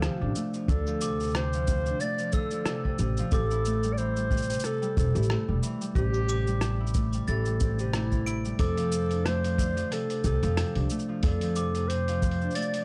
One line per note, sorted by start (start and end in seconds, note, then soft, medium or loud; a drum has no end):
0.00 0.74 C3 medium
0.00 0.53 F3 loud
0.00 0.36 A3 medium
0.00 1.68 C4 medium
0.00 0.21 D4 medium
0.00 0.32 A4 medium
0.00 cross-stick loud
0.00 shaker soft
0.21 0.30 A1 medium
0.21 1.87 D4 medium
0.35 2.01 A3 medium
0.35 shaker medium
0.54 0.74 F3 medium
0.54 shaker soft
0.68 1.91 D2 loud
0.68 1.07 D3 medium
0.68 1.36 A4 loud
0.68 kick loud
0.68 shaker soft
0.87 1.07 F3 medium
0.87 shaker soft
1.01 1.19 C3 medium
1.01 1.33 D6 medium
1.01 shaker medium
1.20 1.34 C3 medium
1.20 shaker soft
1.22 shaker soft
1.30 shaker soft
1.32 cross-stick loud
1.32 shaker soft
1.35 2.38 C3 medium
1.35 2.02 C5 loud
1.35 shaker soft
1.53 2.18 F3 medium
1.53 shaker soft
1.67 3.33 C4 medium
1.67 kick loud
1.67 shaker medium
1.86 4.67 D4 medium
1.86 shaker soft
2.00 3.66 A3 medium
2.00 2.35 D5 loud
2.00 2.32 A6 medium
2.00 shaker soft
2.18 2.38 F3 medium
2.18 shaker soft
2.32 2.71 D3 medium
2.32 2.99 A4 medium
2.32 2.65 E6 medium
2.32 kick loud
2.32 shaker medium
2.51 2.71 F3 medium
2.51 shaker soft
2.66 2.84 C3 medium
2.66 cross-stick loud
2.66 shaker soft
2.85 2.99 C3 medium
2.85 kick medium
2.98 3.21 A1 medium
2.98 3.37 C3 medium
2.98 shaker medium
3.17 3.37 F3 loud
3.17 shaker soft
3.31 4.55 A1 medium
3.31 4.96 C4 medium
3.31 3.95 A4 loud
3.31 3.64 D6 medium
3.31 kick loud
3.31 shaker soft
3.51 5.15 E4 medium
3.51 shaker soft
3.65 5.30 A3 medium
3.65 shaker medium
3.83 4.16 G3 medium
3.83 shaker soft
3.93 3.99 D5 medium
3.98 4.36 E3 loud
3.98 4.67 C5 loud
3.98 shaker soft
4.16 4.81 G3 medium
4.16 shaker soft
4.31 4.48 C3 medium
4.31 kick loud
4.31 shaker soft
4.37 shaker soft
4.42 shaker soft
4.49 4.63 C3 medium
4.49 shaker medium
4.53 shaker medium
4.59 shaker medium
4.64 5.95 C3 medium
4.64 4.98 A4 loud
4.64 cross-stick soft
4.64 shaker soft
4.82 5.47 G3 loud
4.82 shaker soft
4.96 5.08 E1 medium
4.96 6.61 C4 medium
4.96 5.60 A4 medium
4.96 kick loud
4.96 shaker medium
5.15 5.34 A1 loud
5.15 6.80 E4 medium
5.15 shaker soft
5.23 shaker soft
5.30 6.94 A3 medium
5.30 cross-stick loud
5.48 5.57 E1 medium
5.48 5.80 G3 medium
5.63 6.01 E3 loud
5.63 shaker medium
5.81 6.46 G3 medium
5.81 shaker soft
5.95 7.19 A1 loud
5.95 6.13 C3 medium
5.95 6.91 G4 loud
5.95 kick loud
5.95 shaker soft
6.14 6.28 C3 medium
6.14 shaker soft
6.29 7.78 C3 medium
6.29 6.61 D6 medium
6.29 shaker medium
6.47 7.13 G3 medium
6.47 shaker soft
6.61 7.60 C4 medium
6.61 cross-stick medium
6.61 shaker soft
6.80 8.26 E4 medium
6.87 shaker soft
6.94 7.94 A3 medium
6.94 kick loud
6.94 shaker medium
7.13 7.45 G3 medium
7.13 shaker soft
7.27 8.51 A1 medium
7.27 7.82 E3 loud
7.27 7.82 A4 medium
7.27 7.59 A6 medium
7.27 shaker soft
7.45 8.44 G3 medium
7.45 shaker soft
7.60 8.92 C4 medium
7.60 kick loud
7.60 shaker medium
7.79 8.58 C3 medium
7.79 7.94 G4 medium
7.79 shaker soft
7.93 9.25 A3 medium
7.93 8.42 E4 medium
7.93 cross-stick loud
7.93 shaker soft
8.12 8.65 E3 medium
8.12 kick medium
8.12 shaker soft
8.26 8.84 E4 loud
8.26 8.58 D7 medium
8.26 shaker medium
8.45 8.65 G3 medium
8.45 shaker soft
8.59 9.82 F2 medium
8.59 9.64 C3 medium
8.59 9.27 A4 loud
8.59 8.91 D6 medium
8.59 kick loud
8.59 open hi-hat medium
8.59 shaker soft
8.77 9.43 F3 medium
8.77 open hi-hat soft
8.77 shaker soft
8.92 10.57 C4 medium
8.92 shaker medium
9.11 10.76 D4 medium
9.11 open hi-hat soft
9.11 shaker soft
9.25 10.91 A3 medium
9.25 9.95 C5 loud
9.25 cross-stick medium
9.25 open hi-hat medium
9.25 shaker soft
9.44 9.64 F3 medium
9.44 open hi-hat soft
9.44 shaker soft
9.58 9.97 D3 medium
9.58 kick loud
9.58 shaker medium
9.76 9.97 F3 medium
9.76 open hi-hat soft
9.76 shaker soft
9.91 10.09 C3 medium
9.91 10.25 A4 loud
9.91 cross-stick soft
9.91 open hi-hat medium
9.91 shaker soft
10.10 10.23 C3 medium
10.10 open hi-hat soft
10.10 shaker soft
10.24 10.36 C2 medium
10.24 11.29 C3 medium
10.24 10.87 A4 loud
10.24 kick loud
10.24 shaker medium
10.43 10.61 F2 loud
10.43 11.08 F3 loud
10.43 open hi-hat soft
10.43 shaker soft
10.57 12.23 C4 medium
10.57 cross-stick loud
10.57 open hi-hat medium
10.57 shaker soft
10.75 10.85 C2 medium
10.75 12.41 D4 medium
10.75 open hi-hat soft
10.90 12.56 A3 medium
10.90 shaker medium
10.99 shaker soft
11.09 11.29 F3 medium
11.23 12.46 F2 loud
11.23 11.62 D3 medium
11.23 11.90 A4 medium
11.23 kick loud
11.23 open hi-hat medium
11.23 shaker soft
11.41 11.62 F3 medium
11.41 open hi-hat soft
11.41 shaker soft
11.56 11.74 C3 medium
11.56 11.88 D6 medium
11.56 shaker medium
11.75 11.89 C3 medium
11.75 open hi-hat soft
11.75 shaker soft
11.88 12.85 C3 medium
11.88 12.57 C5 medium
11.88 open hi-hat medium
11.88 shaker soft
12.08 12.73 F3 loud
12.08 open hi-hat soft
12.08 shaker soft
12.22 12.85 C4 medium
12.22 kick loud
12.22 shaker medium
12.31 open hi-hat soft
12.41 12.85 D4 medium
12.41 shaker soft
12.51 shaker soft
12.55 12.85 A3 medium
12.55 12.85 D5 loud
12.55 12.85 A6 medium
12.55 open hi-hat medium
12.55 shaker soft
12.62 shaker soft
12.74 12.85 F3 medium
12.74 open hi-hat soft
12.74 shaker soft